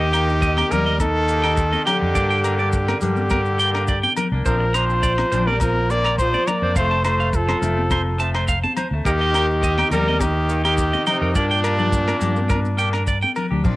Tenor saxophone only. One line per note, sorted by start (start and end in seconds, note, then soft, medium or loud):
0.00 0.74 D#3 medium
0.73 1.01 G3 medium
1.01 1.83 D#3 medium
1.88 2.98 D3 medium
3.03 4.13 D3 medium
4.46 4.76 F3 medium
4.76 5.51 F3 medium
5.49 5.62 G3 medium
5.62 5.93 F3 medium
5.91 6.19 A#3 medium
6.21 6.51 F3 medium
6.49 6.77 A#3 medium
6.79 7.04 A3 medium
7.06 7.36 A3 medium
7.35 8.20 F3 medium
9.07 9.89 D#3 medium
9.93 10.24 G3 medium
10.23 10.64 D#3 medium
10.64 11.04 D#3 medium
11.08 11.37 C3 medium
11.35 13.08 A#2 medium